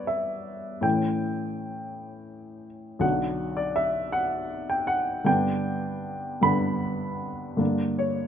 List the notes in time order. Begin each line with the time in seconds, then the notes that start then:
Already playing: G2 E3 B3 D4 B4 C#5 D5
0.07 E5
0.81 A2 E3 A3 C#4 G5
2.99 B1 D3 F#3 D4 F#5
3.57 D5
3.76 E5
4.12 F#5
4.70 G5
4.87 F#5
5.24 G2 D3 B3 D4 G5
6.41 G2 D3 B3 D4 B5
7.57 G2 D3 A#3 D4
7.99 C#5